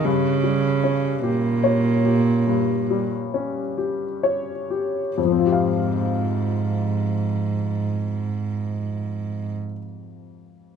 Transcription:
<<
  \new Staff \with { instrumentName = "Upright piano" } { \time 4/4 \key f \minor \tempo 4 = 43 \tuplet 3/2 { g,8 g8 des'8 g'8 des''8 g'8 g,8 g8 des'8 g'8 des''8 g'8 } | <f, f c' f' g' f''>1 | }
  \new Staff \with { instrumentName = "Cello" } { \clef bass \time 4/4 \key f \minor des4 bes,4. r4. | aes,1 | }
>>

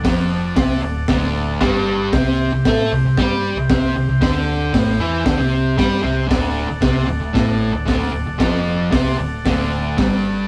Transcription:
<<
  \new Staff \with { instrumentName = "Transistor combo organ" } { \time 4/4 \key d \mixolydian \tempo 4 = 115 <a' d'' fis''>1 | <g' c'' g''>1~ | <g' c'' g''>1 | <a' d'' fis''>1~ |
<a' d'' fis''>1 | }
  \new Staff \with { instrumentName = "Distorted electric guitar" } { \clef bass \time 4/4 \key d \mixolydian <f, f>4 <c c'>8 d,8 <d, d>4 <g, g>4 | <c c'>8. c16 <a a'>8 c16 c16 <g g'>8. c16 <c c'>8 c16 c16 | <d d'>4 <a, a>8 <e e'>8 <d d'>16 <c c'>8. <g g'>8 <c c'>8 | <d, d>8. d,16 <c c'>8 d,16 d,16 <a, a>8. d,16 <d, d>8 d,16 d,16 |
<f, f>4 <c c'>8 d,8 <d, d>4 <g, g>4 | }
  \new Staff \with { instrumentName = "Picked electric bass" } { \clef bass \time 4/4 \key d \mixolydian f,,4 c,8 d,,8 d,,4 g,,4 | c,8. c,16 a,8 c,16 c,16 g,8. c,16 c,8 c,16 c,16 | d,4 a,,8 e,8 d,16 c,8. g,8 c,8 | d,,8. d,,16 c,8 d,,16 d,,16 a,,8. d,,16 d,,8 d,,16 d,,16 |
f,,4 c,8 d,,8 d,,4 g,,4 | }
  \new DrumStaff \with { instrumentName = "Drums" } \drummode { \time 4/4 <hho bd sn>4 <hho bd sn>4 <hho bd sn>4 <hho bd sn>4 | <hho bd sn>4 <hho bd sn>4 <hho bd sn>4 <hho bd sn>4 | <hho bd sn>4 <hho bd sn>4 <hho bd sn>4 <hho bd sn>4 | <hho bd sn>4 <hho bd sn>4 <hho bd sn>4 <hho bd sn>4 |
<hho bd sn>4 <hho bd sn>4 <hho bd sn>4 <hho bd sn>4 | }
>>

